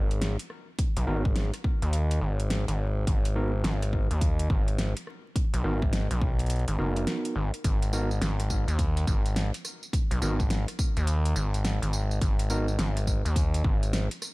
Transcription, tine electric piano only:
1.07 B3 D#4 F#4 A#4
3.36 B3 D#4 F#4 A#4
5.64 B3 D#4 F#4 A#4
6.78 B3 D#4 F#4 A#4
7.93 B3 D#4 F#4 A#4
10.22 B3 D#4 F#4 A#4
12.50 B3 D#4 F#4 A#4

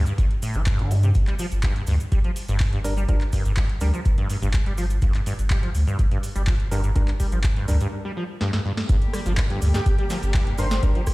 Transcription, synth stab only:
2.84 G3 D4 A#4
3.09 G3 D4 A#4
3.81 G3 D4 A#4
6.71 G3 D4 A#4
6.96 G3 D4 A#4
7.68 G3 D4 A#4
10.59 G3 D4 A#4
10.83 G3 D4 A#4

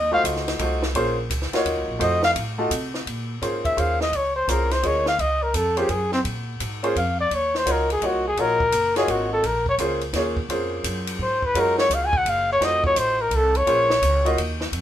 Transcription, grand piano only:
0.11 A3 D#4 F4 F#4 C5
0.59 A3 D#4 F4 F#4 C5
0.95 A#3 C#4 F4 G#4 C5
1.53 A#3 D#4 F4 F#4 C#5
1.99 A3 D#4 F4 F#4 C5
2.58 A3 D#4 F4 F#4 A4
3.42 A#3 C#4 F4 G#4 C5
3.77 A#3 C#4 F4 G#4 C5
4.48 A#3 C#4 F4 G#4 C5
4.82 A#3 C#4 F4 G#4 D#5
5.77 A#3 C#4 F4 G#4 C5
6.83 A#3 C#4 F4 G#4 C5
7.65 A#3 D#4 F4 F#4 C#5
8.02 A#3 D#4 F4 F#4 C#5
8.38 A#3 D#4 F4 F#4 C#5
8.95 A#3 D#4 F4 F#4 C#5
9.79 A#3 C#4 F4 G#4 C5
10.15 A#3 C#4 F4 G#4 C#5
10.50 A#3 C#4 F4 G#4 C5
11.55 G#3 C#4 F4 F#4 A#4
12.60 A3 D#4 F4 F#4 C5
13.66 A#3 C#4 F4 G#4 C5
14.25 A#3 D#4 F4 F#4 D#5

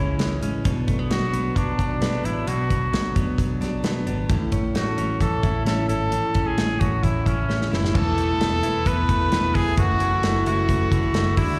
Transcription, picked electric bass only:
Already playing: C#2
0.18 C#2
0.42 A1
0.65 B1
1.10 B1
1.33 B1
1.56 B1
1.79 B1
2.01 B1
2.24 A1
2.46 B1
2.93 B1
3.16 B1
3.38 B1
3.60 B1
3.83 B1
4.07 G#1
4.29 A1
4.75 A1
4.98 A1
5.20 A1
5.43 A1
5.66 A1
5.89 G#1
6.12 A1
6.58 A1
6.81 A1
7.04 A1
7.26 A1
7.50 A1
7.72 F#1
7.95 E1
8.42 E1
8.64 E1
8.86 E1
9.09 E1
9.33 E1
9.55 E1
9.78 F#1
10.23 F#1
10.47 F#1
10.69 F#1
10.92 F#1
11.14 F#1
11.37 D2

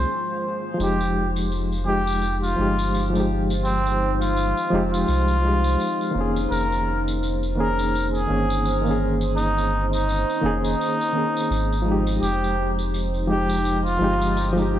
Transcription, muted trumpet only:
Already playing: C5
0.81 G4
1.87 G4
2.43 F4
3.65 C4
4.21 F4
4.93 F4
6.51 A#4
7.58 A#4
8.14 G#4
9.36 D#4
9.93 D#4
10.64 D#4
12.22 G4
13.30 G4
13.86 F4

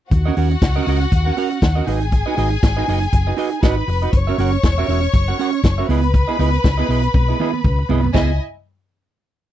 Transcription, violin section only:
0.11 F#4 F#5
1.87 G#4 G#5
3.62 B4 B5
4.13 C#5 C#6
5.88 B4 B5
8.14 E4 D#5 G#5

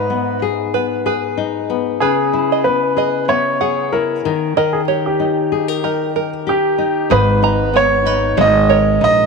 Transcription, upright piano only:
Already playing: B4
2.00 G#4
2.64 B4
3.29 C#5
3.93 A#4
4.57 A#4
4.73 G#4
5.06 G4
6.49 G4
7.12 B4
7.76 C#5
8.41 D#5
9.04 D#5

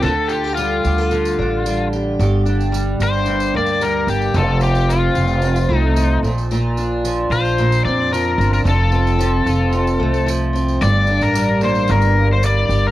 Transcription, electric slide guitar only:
0.02 A4
0.28 G4
0.55 F4
3.03 C5
3.57 D5
3.82 A#4
4.09 G4
4.36 A4
4.63 G4
4.89 F4
5.77 D#4
7.32 C5
7.85 D5
8.13 A#4
8.54 A#4
8.69 A4
10.83 D5
11.23 A#4
11.65 C5
11.91 A#4
12.33 C5
12.46 D5
12.87 A#4

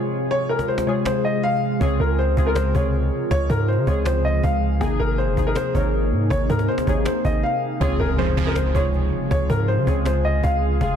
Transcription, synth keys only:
Already playing: C3 G#3 F4 G#4
0.86 C3 G#3 F4 G#4
1.80 C#3 C4 F4 G#4
2.36 C#3 C4 F4 G#4
2.45 C#3 C4 F4 A#4
2.73 C3 C#3 F4 G#4
3.86 C#3 C4 F4 G#4
4.80 C3 A#3 D#4 G#4
5.36 C3 A#3 D#4 G#4
5.45 C3 A#3 D#4 G#4
5.73 C3 A#3 D#4 A#4
6.86 C3 A#3 D#4 G#4
7.80 C#3 C4 F4 G#4
8.36 C#3 C4 F4 G#4
8.45 C#3 C4 F4 G#4
8.73 C3 C#3 F4 G#4
9.86 C#3 C4 F4 G#4
10.80 C3 G#3 F4 G#4

